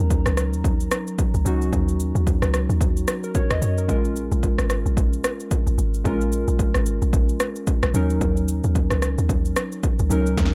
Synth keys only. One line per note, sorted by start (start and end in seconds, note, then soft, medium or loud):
0.00 1.41 F#3 medium
0.00 1.42 C#4 medium
0.00 1.42 D#4 medium
0.00 1.42 A#4 medium
0.00 3.91 A#5 medium
1.45 3.57 F#3 medium
1.45 3.58 C#4 medium
1.45 3.58 D#4 medium
1.45 3.59 F#4 medium
3.24 3.34 A#4 medium
3.35 3.50 C#5 medium
3.51 3.62 D#5 medium
3.62 3.77 C#5 medium
3.78 3.89 A#4 medium
3.88 6.01 G#3 medium
3.88 6.01 C#4 medium
3.88 6.02 F4 medium
3.88 6.02 A#4 medium
6.04 7.90 G#3 medium
6.04 7.91 C#4 medium
6.04 7.91 F4 medium
6.04 7.91 A#4 medium
7.94 10.06 F#3 medium
7.94 10.07 C#4 medium
7.94 10.07 D#4 medium
7.94 10.07 A#4 medium
10.10 10.54 F#3 medium
10.10 10.54 C#4 medium
10.10 10.54 D#4 medium
10.10 10.54 A#4 medium